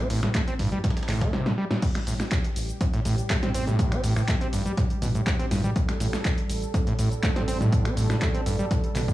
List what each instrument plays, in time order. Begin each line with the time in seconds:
Already playing: analog synth pad A3 C4, ambient pad E4 A4 E5 G5
0.10 analog synth bass A1, acid bass A2, closed hi-hat, open hi-hat
0.23 acid bass A2, finger snap, snare
0.35 acid bass A3, kick, snare, clap, closed hi-hat
0.48 acid bass C4, closed hi-hat
0.59 analog synth bass A1, acid bass G2, closed hi-hat, mid tom, open hi-hat
0.72 acid bass G3, closed hi-hat
0.84 acid bass A2, kick, snare, closed hi-hat
0.90 snare, closed hi-hat
0.97 snare, closed hi-hat
1.03 snare, closed hi-hat
1.09 analog synth bass A1, acid bass A2, snare, clap, closed hi-hat, mid tom, open hi-hat
1.21 acid bass A3, kick, snare, closed hi-hat
1.33 acid bass C3, snare
1.46 acid bass A2, snare
1.58 acid bass G3
1.71 acid bass A2, snare
1.82 acid bass A2, analog synth pad G3 G4, kick, closed hi-hat, crash, cabasa
1.95 finger snap, snare, closed hi-hat
2.07 analog synth bass A1, acid bass A2, closed hi-hat, open hi-hat, cabasa
2.20 finger snap, snare, closed hi-hat, cabasa
2.26 ambient pad D5
2.31 kick, snare, clap, closed hi-hat, cabasa
2.44 snare, closed hi-hat
2.56 analog synth bass A1, closed hi-hat, open hi-hat, cabasa
2.69 closed hi-hat, cabasa
2.81 acid bass C3, kick, closed hi-hat, cabasa
2.93 acid bass A2, snare, closed hi-hat
3.05 analog synth bass A1, acid bass A2, closed hi-hat, open hi-hat, cabasa
3.18 closed hi-hat, cabasa
3.30 acid bass A3, kick, snare, clap, closed hi-hat, cabasa
3.43 acid bass C4, snare, closed hi-hat, mid tom
3.54 analog synth bass A1, acid bass C4, closed hi-hat, open hi-hat, cabasa
3.67 acid bass A2, snare, closed hi-hat, mid tom, cabasa
3.79 kick, closed hi-hat, cabasa
3.92 acid bass C4, finger snap, closed hi-hat
4.04 analog synth bass A1, acid bass A2, closed hi-hat, open hi-hat, cabasa
4.16 acid bass A2, finger snap, cabasa
4.28 acid bass A3, kick, snare, clap, closed hi-hat, cabasa
4.41 acid bass C4, closed hi-hat
4.53 analog synth bass A1, acid bass G2, closed hi-hat, open hi-hat, cabasa
4.66 acid bass G3, closed hi-hat, cabasa
4.77 acid bass A2, kick, snare, closed hi-hat, cabasa
4.90 closed hi-hat
5.02 analog synth bass A1, acid bass B2, closed hi-hat, mid tom, open hi-hat, cabasa
5.15 acid bass A2, closed hi-hat, cabasa
5.27 acid bass A2, kick, snare, clap, closed hi-hat, cabasa
5.39 acid bass C4, snare, closed hi-hat
5.51 analog synth bass A1, acid bass G2, snare, closed hi-hat, open hi-hat, cabasa
5.64 acid bass G3, closed hi-hat, mid tom, cabasa
5.76 acid bass A2, analog synth pad A4, kick, closed hi-hat, cabasa
5.89 finger snap, snare, closed hi-hat
6.00 analog synth bass A1, acid bass A2, closed hi-hat, open hi-hat, cabasa
6.13 finger snap, snare, closed hi-hat, cabasa
6.25 kick, snare, clap, closed hi-hat, cabasa
6.38 snare, closed hi-hat
6.49 analog synth bass A1, closed hi-hat, open hi-hat, cabasa
6.62 closed hi-hat, cabasa
6.74 acid bass C3, kick, closed hi-hat, cabasa
6.87 acid bass A2, snare, closed hi-hat
6.99 analog synth bass A1, acid bass A2, closed hi-hat, open hi-hat, cabasa
7.12 closed hi-hat, cabasa
7.23 acid bass A3, kick, snare, clap, closed hi-hat, cabasa
7.36 acid bass C4, snare, closed hi-hat, mid tom
7.48 analog synth bass A1, acid bass C4, closed hi-hat, open hi-hat, cabasa
7.61 acid bass A2, snare, closed hi-hat, mid tom, cabasa
7.72 kick, closed hi-hat, cabasa
7.85 acid bass C4, finger snap, closed hi-hat
7.97 analog synth bass A1, acid bass A2, closed hi-hat, open hi-hat, cabasa
8.10 acid bass A2, finger snap, snare, cabasa
8.22 acid bass A3, kick, snare, clap, closed hi-hat, cabasa
8.34 acid bass C4, closed hi-hat
8.46 analog synth bass A1, acid bass G2, closed hi-hat, open hi-hat, cabasa
8.59 acid bass G3, closed hi-hat, cabasa
8.71 acid bass A2, kick, snare, closed hi-hat, cabasa
8.84 closed hi-hat
8.95 analog synth bass A1, acid bass B2, clap, closed hi-hat, mid tom, open hi-hat, cabasa
9.08 acid bass A2, kick, closed hi-hat, cabasa